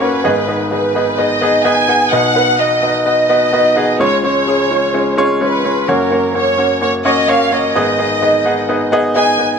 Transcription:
Already playing: grand piano F#1 F#2 A#4 C#5
0.00 grand piano A#3 C#4 F#4 C#5, violin section B4
0.24 grand piano G#1 G#2 B3 D#4 G#4 D#5
0.48 grand piano B3 D#4 G#4 D#5
0.71 grand piano B3 D#4 G#4 D#5, violin section B4
0.95 grand piano B3 D#4 G#4 D#5
1.18 grand piano B3 D#4 G#4 D#5, violin section D#5
1.41 grand piano B3 D#4 G#4 D#5
1.65 grand piano B3 D#4 G#4 D#5, violin section G#5
1.88 grand piano B3 D#4 G#4 F#5
2.12 grand piano B1 B2 B3 D#4 F#4 D#5, violin section F#5
2.35 grand piano B3 D#4 F#4 B4
2.59 grand piano B3 D#4 F#4 D#5, violin section D#5
2.82 grand piano B3 D#4 F#4 D#5
3.06 grand piano B3 D#4 F#4 D#5, violin section D#5
3.29 grand piano B3 D#4 F#4 D#5
3.53 grand piano B3 D#4 F#4 D#5
3.76 grand piano B3 D#4 F#4 G#4
4.00 grand piano C#2 C#3 G#3 C#4 F4 C#5, violin section C#5
4.24 grand piano G#3 C#4 F4 C#5, violin section C#5
4.47 grand piano G#3 C#4 F4 G#4
4.71 grand piano G#3 C#4 F4 C#5
4.94 grand piano G#3 C#4 F4 C#5
5.17 grand piano G#3 C#4 F4 C#5
5.41 grand piano G#3 C#4 F4 C#5, violin section B4
5.64 grand piano G#3 C#4 F4 C#5
5.88 grand piano F#1 F#2 A#3 C#4 F#4 C#5, violin section A#4
6.11 grand piano A#3 C#4 F#4 C#5
6.34 grand piano A#3 C#4 F#4 C#5, violin section C#5
6.58 grand piano A#3 C#4 F#4 C#5
6.81 grand piano A#3 C#4 F#4 C#5, violin section C#5
7.05 grand piano A#3 C#4 F#4 C#5, violin section D#5
7.28 grand piano A#3 C#4 F#4 C#5, violin section F5
7.52 grand piano A#3 C#4 F#4 C#5, violin section D#5
7.75 grand piano G#1 G#2 B3 D#4 G#4 D#5
7.99 grand piano B3 D#4 G#4 D#5
8.22 grand piano B3 D#4 G#4 D#5
8.45 grand piano B3 D#4 G#4 F#5
8.69 grand piano B3 D#4 G#4 D#5
8.92 grand piano B3 D#4 G#4 D#5
9.16 grand piano B3 D#4 G#4 D#5, violin section G#5
9.39 grand piano B3 D#4 G#4 D#5

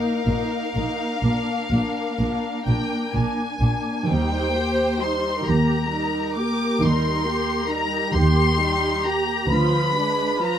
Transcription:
Already playing: viola section A#3 D#4, violin section A#4 F5
0.26 double bass section A#1, cello section A#2, viola section A#3 D#4
0.75 double bass section A#1, cello section A#2, viola section A#3 D#4
1.22 double bass section A#1, cello section A#2, viola section A#3 D4
1.71 double bass section A#1, cello section A#2, viola section A#3 D4
2.19 double bass section A#1, cello section A#2, viola section A#3 D4
2.65 double bass section A#1, cello section A#2, viola section A#3 D4, violin section G5
3.14 double bass section A#1, cello section A#2, viola section A#3 D4, violin section G#5
3.61 double bass section A#1, cello section A#2, viola section A#3 D4
4.07 double bass section D#2, cello section D#3, viola section G3 D#4, violin section C5 G5
4.54 viola section A#3 G4
5.00 viola section G3 D#4, violin section C6
5.46 double bass section D#2, cello section D#3, viola section A#3 G4, violin section A#4 A#5
5.92 viola section G3 D#4
6.37 viola section A#3 G4, violin section D6
6.81 double bass section D#2, cello section D#3, viola section G3 D#4, violin section C6
7.26 viola section A#3 G4
7.69 viola section G3 D#4, violin section A#5
8.14 double bass section D#2, cello section D#3, viola section A#3 G4, violin section G4 C6
8.60 viola section G3 D#4
9.05 viola section A#3 G4, violin section A#5
9.50 double bass section D2, cello section D3, viola section F3 F4, violin section B4 B5
9.97 viola section G#3 D4
10.40 viola section F3 F4, violin section A#5

